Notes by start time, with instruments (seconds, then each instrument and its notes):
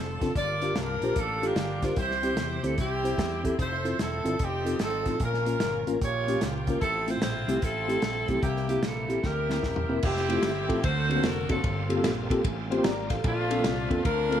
Already playing: fingered electric bass F1, tonewheel organ F3 C4 D4 A4, saxophone section A4
0.21 fingered electric bass F#1, tine electric piano C4 D4 F4 A4, kick, snare, closed hi-hat
0.35 fingered electric bass G1, tine electric piano G2, tonewheel organ F3 A#3 D4 G4, saxophone section F4 A#4 D5, kick, closed hi-hat
0.62 tine electric piano D4 F4 G4 A#4, closed hi-hat
0.75 fingered electric bass C2, saxophone section D4 F4 A#4, snare, closed hi-hat
1.01 fingered electric bass A#1, tine electric piano D4 F4 G4 C5, closed hi-hat
1.16 fingered electric bass A1, saxophone section D4 F4 A4, kick, closed hi-hat
1.43 saxophone section A#3 D4 G4, tine electric piano D4 F4 G4 A4, closed hi-hat
1.55 fingered electric bass G1, snare, closed hi-hat
1.82 tine electric piano D4 F4 G4 C5, saxophone section A#4, kick, snare, closed hi-hat
1.96 fingered electric bass C2, tine electric piano C3, tonewheel organ E3 G3 C4 F4, saxophone section E4 G4 C5, kick, closed hi-hat
2.02 tonewheel organ G4
2.11 snare
2.23 tine electric piano C4 E4 G4 C5, closed hi-hat
2.37 fingered electric bass E2, snare, closed hi-hat
2.63 fingered electric bass D2, tine electric piano C4 E4 G4 C5, saxophone section A4, closed hi-hat
2.78 fingered electric bass C2, saxophone section C4 E4 G4, kick, closed hi-hat
3.04 tine electric piano C4 E4 G4 C5, closed hi-hat
3.18 fingered electric bass E2, kick, snare, closed hi-hat
3.43 tine electric piano C4 E4 G4 A4, kick, closed hi-hat
3.58 fingered electric bass F1, tonewheel organ F3 C4 E4 A4, saxophone section E4 A4 C5, kick, closed hi-hat
3.84 tine electric piano C4 E4 F4 A4, closed hi-hat
3.99 fingered electric bass E1, saxophone section C4 E4 A4, snare, closed hi-hat
4.24 fingered electric bass G1, tine electric piano C4 E4 F4 A4, closed hi-hat
4.39 fingered electric bass F1, tonewheel organ F3 C4 D#4 A4, saxophone section C4 D#4 G4, kick, closed hi-hat
4.65 tine electric piano C4 D#4 F4 A4, closed hi-hat
4.79 fingered electric bass G#1, saxophone section C4 D#4 A4, snare, closed hi-hat
5.06 fingered electric bass A1, tine electric piano C4 D#4 F4 A4, kick, snare, closed hi-hat
5.20 fingered electric bass A#1, tine electric piano A#2, tonewheel organ F3 A#3 C#4 A#4, saxophone section C#4 F4 A#4, kick, closed hi-hat
5.34 snare
5.46 tine electric piano A#3 C#4 F4 A#4, closed hi-hat
5.60 fingered electric bass G1, snare, closed hi-hat
5.87 fingered electric bass A1, tine electric piano A#3 C#4 F4 A#4, closed hi-hat
6.00 fingered electric bass A#1, tine electric piano A#2, tonewheel organ F3 A#3 C#4 G4, saxophone section F4 G4 C#5, kick, closed hi-hat
6.28 tine electric piano A#3 C#4 F4 G4, closed hi-hat
6.41 fingered electric bass C#2, snare, closed hi-hat
6.67 tine electric piano A#3 C#4 F4 A#4, kick, closed hi-hat
6.80 fingered electric bass A1, tine electric piano A2, tonewheel organ F3 C4 A4 E5, saxophone section C4 E4 A4, kick, closed hi-hat
7.07 tine electric piano A3 C4 E4 F4, saxophone section C5, closed hi-hat
7.21 fingered electric bass A#1, saxophone section E4 F4 C5, snare, closed hi-hat
7.48 fingered electric bass C2, tine electric piano A3 C4 E4 G4, closed hi-hat
7.62 fingered electric bass A1, saxophone section C4 E4 A4, kick, closed hi-hat
7.88 tine electric piano A3 C4 E4 G4, closed hi-hat
8.02 fingered electric bass A#1, snare, closed hi-hat
8.28 fingered electric bass B1, tine electric piano A3 C4 E4 G4, kick, closed hi-hat
8.41 fingered electric bass C2, tine electric piano C3, tonewheel organ D#3 A#3 C4 G4, saxophone section A#3 E4 G4, kick, closed hi-hat
8.46 tonewheel organ E3
8.56 snare
8.69 tine electric piano A#3 C4 E4 G4, saxophone section G4, closed hi-hat
8.82 fingered electric bass A#1, saxophone section E4 A4, snare, closed hi-hat
9.08 tine electric piano A#3 C4 E4 G4, closed hi-hat
9.23 fingered electric bass D2, saxophone section E4 G4 A#4, kick, snare
9.49 tine electric piano A#3 C4 E4 A#4, snare
9.63 fingered electric bass D#1, kick, snare
9.76 floor tom
9.89 fingered electric bass E1, tine electric piano A#3 C4 E4 A#4
10.02 fingered electric bass F1, tonewheel organ F3 A3 C4 E4 G4, saxophone section C4 E4 G4, kick, crash
10.17 snare
10.29 tine electric piano A3 C4 E4 F4 G4, ride bell
10.36 tine electric piano A3 C4 E4 F4 G4
10.43 fingered electric bass G1, snare, ride bell
10.69 fingered electric bass A1, tine electric piano A3 C4 E4 F4 A4, kick, ride bell
10.83 fingered electric bass D2, tine electric piano D3, tonewheel organ E3 A#3 C4 D4 A4, saxophone section F#4 A4 C5, kick, ride bell
10.89 tonewheel organ F#3
11.09 tine electric piano A#3 C4 D4 F#4 A4, ride bell
11.16 tine electric piano A#3 C4 D4 F#4 C5
11.23 fingered electric bass F1, saxophone section A#4, snare, ride bell
11.49 fingered electric bass F#1, tine electric piano A#3 C4 D4 F#4 A4, saxophone section C4 F4 A4, kick, ride bell
11.63 fingered electric bass G1, tine electric piano G2, tonewheel organ G3 A#3 C4 F4 A4, kick, ride bell
11.89 tine electric piano A#3 C4 F4 G4 A4, ride bell
11.97 tine electric piano A#3 C4 F4 G4 A4
12.04 fingered electric bass A#1, snare, ride bell
12.30 tine electric piano A#3 C4 F4 G4 A4, kick, ride bell
12.44 fingered electric bass A1, kick, ride bell
12.70 tine electric piano A#3 C4 F4 G4 C5, tonewheel organ A4 C5, ride bell
12.77 tine electric piano A#3 C4 F4 G4 C5
12.83 fingered electric bass G#1, tonewheel organ A#4 D5, tine electric piano D5 A#5, snare, ride bell
13.10 fingered electric bass A1, tine electric piano A4 F5, tonewheel organ A4 C5, kick, snare, ride bell
13.24 fingered electric bass A#1, tine electric piano A#2, tonewheel organ F3 C4 D4 G4, saxophone section A3 D4 F4, kick, ride bell
13.29 tonewheel organ C5
13.50 tine electric piano A#3 C4 D4 F4 A4, ride bell
13.56 tine electric piano A#3 C4 D4 F4 A4
13.64 fingered electric bass C2, snare, ride bell
13.90 fingered electric bass E2, tine electric piano A#3 C4 D4 F4 A4, kick, ride bell
14.05 fingered electric bass D2, saxophone section D4 F4 A#4, kick, ride bell
14.30 tine electric piano A#3 C4 D4 F4 A4, ride bell